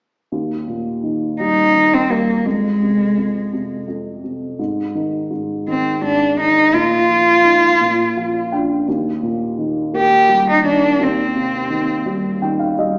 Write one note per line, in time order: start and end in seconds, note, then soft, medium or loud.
0.32 2.41 D#2 soft
0.68 2.06 A#2 soft
1.03 1.72 D#3 soft
1.40 2.08 G3 soft
1.40 1.95 D#4 medium
1.74 2.43 D#3 soft
1.94 2.13 C4 medium
2.10 2.44 G3 soft
2.10 2.48 A#3 medium
2.46 3.16 F2 soft
2.46 3.88 G#3 medium
2.82 3.51 C3 soft
3.17 3.86 F2 soft
3.53 4.22 C3 soft
3.88 4.57 F2 soft
4.24 4.58 C3 soft
4.59 5.29 G#2 soft
4.95 5.66 D#3 soft
5.31 6.00 G#2 soft
5.68 6.36 D#3 soft
5.68 6.00 C4 medium
6.01 6.70 G#2 soft
6.01 6.36 D4 medium
6.38 6.72 D#3 soft
6.38 6.76 D#4 medium
6.73 7.77 A#2 soft
6.73 8.52 F4 medium
7.09 7.78 F3 soft
7.44 7.79 D#4 soft
7.81 8.84 A#2 medium
8.17 8.85 F3 soft
8.17 8.49 F5 soft
8.52 8.86 D4 soft
8.52 8.85 G5 soft
8.88 10.97 D#2 soft
9.23 10.61 A#2 soft
9.58 10.62 D#3 soft
9.94 10.97 A#3 soft
9.94 10.45 G4 medium
10.29 10.98 G3 soft
10.50 10.65 D#4 medium
10.63 10.98 D#3 soft
10.63 11.04 D4 medium
10.99 12.99 D#2 medium
10.99 12.43 C4 medium
11.35 12.73 C3 soft
11.70 12.41 D#3 soft
12.06 12.77 G3 soft
12.42 12.99 D#3 soft
12.42 12.58 G5 medium
12.59 12.76 F5 medium
12.78 12.99 G3 soft
12.78 12.99 D#5 medium